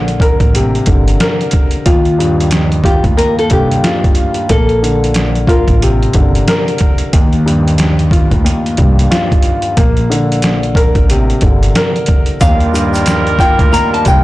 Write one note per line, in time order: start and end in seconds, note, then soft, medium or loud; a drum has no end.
0.00 0.37 A#1 loud
0.00 0.86 D3 medium
0.00 0.87 A#3 medium
0.08 closed hi-hat soft
0.20 1.19 A#4 medium
0.20 kick loud
0.20 closed hi-hat medium
0.40 0.77 A1 medium
0.40 kick medium
0.40 closed hi-hat soft
0.55 1.87 C3 medium
0.55 closed hi-hat medium
0.75 closed hi-hat soft
0.86 1.13 G1 medium
0.86 1.86 D3 medium
0.86 kick medium
0.86 closed hi-hat medium
1.08 closed hi-hat medium
1.20 1.86 A#4 medium
1.20 snare loud
1.20 closed hi-hat medium
1.41 closed hi-hat soft
1.51 kick medium
1.51 closed hi-hat medium
1.71 closed hi-hat medium
1.86 3.16 D#2 medium
1.86 3.01 D#2 loud
1.86 2.48 F4 medium
1.86 kick loud
1.86 closed hi-hat loud
2.05 closed hi-hat soft
2.19 3.49 G2 medium
2.19 closed hi-hat medium
2.40 closed hi-hat medium
2.51 snare loud
2.51 closed hi-hat medium
2.72 closed hi-hat soft
2.84 3.82 F4 medium
2.84 3.03 G4 medium
2.84 kick loud
2.84 closed hi-hat medium
3.04 3.15 D2 medium
3.04 kick medium
3.04 closed hi-hat soft
3.17 4.49 D#2 medium
3.17 3.35 A#4 medium
3.17 closed hi-hat loud
3.39 3.50 A4 medium
3.39 closed hi-hat soft
3.50 3.77 C2 medium
3.50 4.50 G2 medium
3.50 4.47 G4 medium
3.50 kick loud
3.50 closed hi-hat medium
3.71 closed hi-hat medium
3.84 4.50 F4 loud
3.84 snare loud
3.84 closed hi-hat medium
4.04 kick loud
4.04 closed hi-hat soft
4.15 closed hi-hat medium
4.34 closed hi-hat medium
4.49 5.65 A#1 loud
4.49 6.14 A#3 medium
4.49 5.45 A4 medium
4.49 kick loud
4.49 closed hi-hat loud
4.69 closed hi-hat soft
4.83 6.13 D3 medium
4.83 closed hi-hat medium
5.04 closed hi-hat medium
5.14 snare loud
5.14 closed hi-hat medium
5.35 closed hi-hat soft
5.47 5.98 F4 medium
5.47 6.47 A#4 medium
5.47 kick loud
5.47 closed hi-hat medium
5.68 6.04 A1 medium
5.68 kick medium
5.68 closed hi-hat soft
5.82 7.14 C3 medium
5.82 closed hi-hat loud
6.03 closed hi-hat soft
6.13 6.40 G1 medium
6.13 7.14 D3 medium
6.13 kick medium
6.13 closed hi-hat medium
6.35 closed hi-hat medium
6.48 7.14 A#4 loud
6.48 snare loud
6.48 closed hi-hat medium
6.68 closed hi-hat soft
6.78 kick medium
6.78 closed hi-hat medium
6.98 closed hi-hat medium
7.13 8.43 D#2 medium
7.13 8.28 D#2 loud
7.13 kick loud
7.13 closed hi-hat loud
7.33 closed hi-hat soft
7.46 8.76 G2 medium
7.46 closed hi-hat medium
7.68 closed hi-hat medium
7.78 snare loud
7.78 closed hi-hat medium
7.99 closed hi-hat soft
8.11 9.09 F4 medium
8.11 kick loud
8.11 closed hi-hat medium
8.31 8.42 D2 medium
8.31 kick medium
8.31 closed hi-hat soft
8.45 9.77 D#2 medium
8.45 closed hi-hat loud
8.66 closed hi-hat soft
8.77 9.04 C2 medium
8.77 9.77 G2 medium
8.77 kick medium
8.77 closed hi-hat medium
8.99 closed hi-hat medium
9.11 9.77 F4 loud
9.11 snare loud
9.11 closed hi-hat medium
9.32 kick loud
9.32 closed hi-hat soft
9.42 closed hi-hat medium
9.62 closed hi-hat medium
9.77 10.92 A#1 loud
9.77 11.42 A#3 medium
9.77 kick loud
9.77 closed hi-hat loud
9.97 closed hi-hat soft
10.10 11.41 D3 medium
10.10 closed hi-hat medium
10.32 closed hi-hat medium
10.42 snare loud
10.42 closed hi-hat medium
10.63 closed hi-hat soft
10.75 11.74 A#4 medium
10.75 kick loud
10.75 closed hi-hat medium
10.95 11.32 A1 medium
10.95 kick medium
10.95 closed hi-hat soft
11.10 12.42 C3 medium
11.10 closed hi-hat medium
11.30 closed hi-hat soft
11.41 11.68 G1 medium
11.41 12.41 D3 medium
11.41 kick loud
11.41 closed hi-hat medium
11.63 closed hi-hat medium
11.75 12.41 A#4 loud
11.75 snare loud
11.75 closed hi-hat medium
11.96 closed hi-hat soft
12.06 kick medium
12.06 closed hi-hat medium
12.26 closed hi-hat medium
12.41 13.71 D#2 medium
12.41 13.56 D#2 loud
12.41 14.24 D#3 medium
12.41 14.24 G3 medium
12.41 14.24 D4 medium
12.41 14.24 F4 medium
12.41 14.24 A#4 loud
12.41 13.03 F5 loud
12.41 kick loud
12.41 closed hi-hat loud
12.41 shaker medium
12.60 closed hi-hat soft
12.73 14.04 G2 medium
12.73 closed hi-hat medium
12.73 shaker medium
12.94 closed hi-hat medium
12.94 shaker medium
13.06 snare loud
13.06 closed hi-hat medium
13.06 shaker medium
13.27 closed hi-hat soft
13.39 14.24 F4 medium
13.39 13.58 G5 medium
13.39 kick loud
13.39 closed hi-hat medium
13.39 shaker soft
13.59 13.70 D2 medium
13.59 kick loud
13.59 closed hi-hat medium
13.72 14.24 D#2 medium
13.72 13.91 A#5 medium
13.72 closed hi-hat loud
13.72 shaker medium
13.94 14.05 A5 medium
13.94 closed hi-hat soft
14.05 14.24 C2 medium
14.05 14.24 G2 medium
14.05 14.24 G5 medium
14.05 kick loud
14.05 closed hi-hat medium
14.05 shaker medium